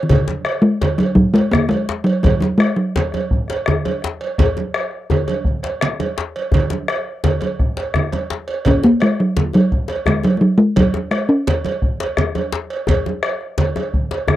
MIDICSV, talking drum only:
0, 0, Header, 1, 2, 480
1, 0, Start_track
1, 0, Key_signature, 6, "major"
1, 0, Tempo, 357143
1, 130, Time_signature, 12, 3, 24, 8
1, 9729, Tempo, 351906
1, 19448, End_track
2, 0, Start_track
2, 0, Title_t, "Talking drum"
2, 0, Program_c, 0, 116
2, 39, Note_on_c, 0, 51, 59
2, 133, Note_on_c, 0, 49, 74
2, 153, Note_off_c, 0, 51, 0
2, 830, Note_on_c, 0, 56, 80
2, 850, Note_off_c, 0, 49, 0
2, 1319, Note_on_c, 0, 54, 83
2, 1339, Note_off_c, 0, 56, 0
2, 1540, Note_off_c, 0, 54, 0
2, 1548, Note_on_c, 0, 54, 85
2, 1797, Note_on_c, 0, 56, 92
2, 1817, Note_off_c, 0, 54, 0
2, 2036, Note_on_c, 0, 58, 91
2, 2056, Note_off_c, 0, 56, 0
2, 2268, Note_on_c, 0, 56, 94
2, 2288, Note_off_c, 0, 58, 0
2, 2735, Note_off_c, 0, 56, 0
2, 2743, Note_on_c, 0, 54, 88
2, 2985, Note_off_c, 0, 54, 0
2, 2998, Note_on_c, 0, 54, 80
2, 3225, Note_off_c, 0, 54, 0
2, 3233, Note_on_c, 0, 54, 76
2, 3464, Note_on_c, 0, 56, 75
2, 3484, Note_off_c, 0, 54, 0
2, 3715, Note_on_c, 0, 54, 74
2, 3735, Note_off_c, 0, 56, 0
2, 4450, Note_off_c, 0, 54, 0
2, 11689, Note_on_c, 0, 61, 89
2, 11917, Note_on_c, 0, 58, 84
2, 11938, Note_off_c, 0, 61, 0
2, 12164, Note_on_c, 0, 56, 78
2, 12184, Note_off_c, 0, 58, 0
2, 12394, Note_off_c, 0, 56, 0
2, 12405, Note_on_c, 0, 54, 77
2, 12842, Note_off_c, 0, 54, 0
2, 12883, Note_on_c, 0, 54, 82
2, 13594, Note_on_c, 0, 56, 79
2, 13615, Note_off_c, 0, 54, 0
2, 13823, Note_off_c, 0, 56, 0
2, 13831, Note_on_c, 0, 54, 80
2, 13996, Note_off_c, 0, 54, 0
2, 14004, Note_on_c, 0, 56, 55
2, 14055, Note_on_c, 0, 54, 72
2, 14075, Note_off_c, 0, 56, 0
2, 14282, Note_on_c, 0, 56, 85
2, 14303, Note_off_c, 0, 54, 0
2, 14544, Note_on_c, 0, 54, 72
2, 14564, Note_off_c, 0, 56, 0
2, 15009, Note_on_c, 0, 56, 71
2, 15030, Note_off_c, 0, 54, 0
2, 15245, Note_off_c, 0, 56, 0
2, 15253, Note_on_c, 0, 61, 76
2, 16163, Note_off_c, 0, 61, 0
2, 19448, End_track
0, 0, End_of_file